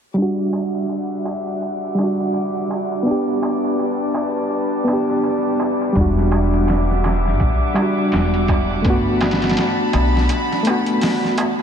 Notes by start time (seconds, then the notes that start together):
0.14 G3 D4 E5 F#5 D6, darbuka tek
0.22 F#4
0.39 darbuka tek
0.53 darbuka tek
0.74 darbuka tek
0.89 darbuka tek
1.11 darbuka tek
1.25 darbuka tek
1.47 darbuka tek
1.62 darbuka tek
1.84 darbuka tek
1.95 G3, darbuka tek
1.99 D4
2.03 F#4
2.20 darbuka tek
2.34 darbuka tek
2.56 darbuka tek
2.70 darbuka tek
2.92 darbuka tek
3.03 B3 D4 B4 A5
3.07 G4, darbuka tek
3.28 darbuka tek
3.43 darbuka tek
3.64 darbuka tek
3.79 darbuka tek
4.00 darbuka tek
4.14 darbuka tek
4.37 darbuka tek
4.50 darbuka tek
4.73 darbuka tek
4.84 B3, darbuka tek
4.89 D4
4.93 G4
5.10 darbuka tek
5.24 darbuka tek
5.45 darbuka tek
5.60 darbuka tek
5.81 darbuka tek
5.93 E1 G3 E5 F#5 D6, kick, closed hi-hat, darbuka tek
5.97 D4
6.01 F#4
6.17 snare, darbuka tek
6.32 closed hi-hat, darbuka tek
6.53 closed hi-hat, darbuka tek
6.67 snare, closed hi-hat, darbuka tek
6.89 snare, darbuka tek
7.04 snare, closed hi-hat, darbuka tek
7.25 snare, darbuka tek
7.40 B1, kick, closed hi-hat, darbuka tek
7.62 darbuka tek
7.74 G3, closed hi-hat, darbuka tek
7.78 D4 F#4
7.98 darbuka tek
8.12 E1, snare, closed hi-hat, darbuka tek
8.34 closed hi-hat, darbuka tek
8.48 kick, closed hi-hat, darbuka tek
8.70 darbuka tek
8.82 G1 A3 B3 A5 B5, kick, closed hi-hat, darbuka tek
8.90 F#4
9.06 darbuka tek
9.21 snare, closed hi-hat, darbuka tek
9.31 snare, closed hi-hat
9.42 snare, closed hi-hat, darbuka tek
9.49 snare, closed hi-hat
9.57 snare, closed hi-hat, darbuka tek
9.79 darbuka tek
9.93 B1, closed hi-hat, darbuka tek
10.16 snare, darbuka tek
10.29 closed hi-hat, darbuka tek
10.51 snare, darbuka tek
10.63 A3 B3, closed hi-hat
10.67 F#4, darbuka tek
10.86 closed hi-hat, darbuka tek
11.01 snare, open hi-hat, darbuka tek
11.23 snare, darbuka tek
11.38 closed hi-hat, darbuka tek
11.59 darbuka tek